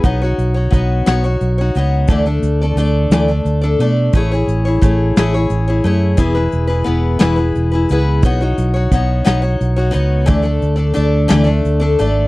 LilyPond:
<<
  \new Staff \with { instrumentName = "Steel-string acoustic guitar" } { \time 6/8 \key b \mixolydian \tempo 4. = 59 <b dis' fis' cis''>16 <dis' fis' cis''>8 <dis' fis' cis''>16 <b dis' fis' cis''>8 <b dis' fis' cis''>16 <dis' fis' cis''>8 <dis' fis' cis''>16 <b dis' fis' cis''>8 | <d e a d' a' d''>16 <a d' a' d''>8 <a d' a' d''>16 <a d' a' d''>8 <d e a d' a' d''>16 <a d' a' d''>8 <a d' a' d''>16 <a d' a' d''>8 | <a e' gis' cis''>16 <e' gis' cis''>8 <e' gis' cis''>16 <a e' gis' cis''>8 <a e' gis' cis''>16 <e' gis' cis''>8 <e' gis' cis''>16 <a e' gis' cis''>8 | <e b e' gis' b'>16 <e' gis' b'>8 <e' gis' b'>16 <b e' gis' b'>8 <e b e' gis' b'>16 <e' gis' b'>8 <e' gis' b'>16 <b e' gis' b'>8 |
<b dis' fis' cis''>16 <dis' fis' cis''>8 <dis' fis' cis''>16 <b dis' fis' cis''>8 <b dis' fis' cis''>16 <dis' fis' cis''>8 <dis' fis' cis''>16 <b dis' fis' cis''>8 | <d e a d' a' d''>16 <a d' a' d''>8 <a d' a' d''>16 <a d' a' d''>8 <d e a d' a' d''>16 <a d' a' d''>8 <a d' a' d''>16 <a d' a' d''>8 | }
  \new Staff \with { instrumentName = "Fingered electric bass" } { \clef bass \time 6/8 \key b \mixolydian b,,8 b,,8 b,,8 b,,8 b,,8 cis,8 | d,8 d,8 d,8 d,8 d,8 b,8 | a,,8 a,,8 a,,8 a,,8 a,,8 fis,8 | e,,8 e,,8 e,,8 e,,8 e,,8 cis,8 |
b,,8 b,,8 b,,8 b,,8 b,,8 cis,8 | d,8 d,8 d,8 d,8 d,8 gis,,8 | }
  \new DrumStaff \with { instrumentName = "Drums" } \drummode { \time 6/8 <hh bd>8 hh8 <hh bd>8 <hh sn>8 hh8 hh8 | <hh bd>8 hh8 hh8 <hh sn>8 hh8 hh8 | <hh bd>8 hh8 <hh bd>8 <hh sn>8 hh8 hh8 | <hh bd>8 hh8 hh8 <hh sn>8 hh8 hh8 |
<hh bd>8 hh8 <hh bd>8 <hh sn>8 hh8 hh8 | <hh bd>8 hh8 hh8 <hh sn>8 hh8 hh8 | }
>>